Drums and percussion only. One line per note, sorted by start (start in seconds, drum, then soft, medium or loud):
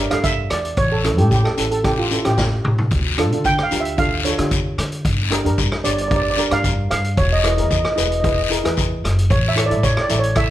0.11 cross-stick medium
0.11 closed hi-hat medium
0.23 kick medium
0.23 closed hi-hat medium
0.23 short guiro medium
0.50 cross-stick medium
0.50 closed hi-hat medium
0.65 closed hi-hat medium
0.77 kick loud
0.77 closed hi-hat medium
0.77 long guiro medium
1.04 cross-stick medium
1.04 closed hi-hat medium
1.18 closed hi-hat medium
1.31 kick medium
1.31 closed hi-hat medium
1.31 short guiro medium
1.45 cross-stick medium
1.58 closed hi-hat medium
1.58 short guiro medium
1.71 closed hi-hat medium
1.84 kick loud
1.84 cross-stick medium
1.84 closed hi-hat medium
1.84 long guiro medium
2.11 closed hi-hat medium
2.11 short guiro medium
2.25 cross-stick medium
2.25 closed hi-hat medium
2.37 kick medium
2.37 snare medium
2.37 short guiro medium
2.65 mid tom medium
2.78 floor tom medium
2.91 kick loud
2.91 closed hi-hat medium
2.91 long guiro medium
3.18 cross-stick medium
3.18 closed hi-hat medium
3.32 closed hi-hat medium
3.44 kick medium
3.44 closed hi-hat medium
3.44 short guiro medium
3.58 cross-stick medium
3.71 closed hi-hat medium
3.71 short guiro medium
3.85 closed hi-hat medium
3.98 kick loud
3.98 closed hi-hat medium
3.98 long guiro medium
4.25 closed hi-hat medium
4.25 short guiro medium
4.39 cross-stick medium
4.39 closed hi-hat medium
4.51 kick medium
4.51 closed hi-hat medium
4.51 short guiro medium
4.78 cross-stick medium
4.78 closed hi-hat medium
4.92 closed hi-hat medium
5.05 kick loud
5.05 closed hi-hat medium
5.05 long guiro medium
5.32 cross-stick medium
5.32 closed hi-hat medium
5.46 closed hi-hat medium
5.58 kick medium
5.58 closed hi-hat medium
5.58 short guiro medium
5.72 cross-stick medium
5.85 closed hi-hat medium
5.85 short guiro medium
5.98 closed hi-hat medium
6.11 kick loud
6.11 closed hi-hat medium
6.11 long guiro medium
6.37 closed hi-hat medium
6.37 short guiro medium
6.51 cross-stick medium
6.51 closed hi-hat medium
6.64 kick medium
6.64 closed hi-hat medium
6.64 short guiro medium
6.91 cross-stick medium
6.91 closed hi-hat medium
7.04 closed hi-hat medium
7.17 kick loud
7.17 closed hi-hat medium
7.17 long guiro medium
7.44 cross-stick medium
7.44 closed hi-hat medium
7.58 closed hi-hat medium
7.71 kick medium
7.71 closed hi-hat medium
7.71 short guiro medium
7.85 cross-stick medium
7.98 closed hi-hat medium
7.98 short guiro medium
8.12 closed hi-hat medium
8.24 kick loud
8.24 closed hi-hat medium
8.24 long guiro medium
8.50 closed hi-hat medium
8.50 short guiro medium
8.65 cross-stick medium
8.65 closed hi-hat medium
8.77 kick medium
8.77 closed hi-hat medium
8.77 short guiro medium
9.05 cross-stick medium
9.05 closed hi-hat medium
9.18 closed hi-hat medium
9.30 kick loud
9.30 closed hi-hat medium
9.30 long guiro medium
9.57 cross-stick medium
9.57 closed hi-hat medium
9.71 closed hi-hat medium
9.83 kick medium
9.83 closed hi-hat medium
9.83 short guiro medium
9.97 cross-stick medium
10.09 closed hi-hat medium
10.09 short guiro medium
10.23 closed hi-hat medium
10.35 kick loud
10.35 cross-stick medium
10.35 closed hi-hat medium
10.35 long guiro medium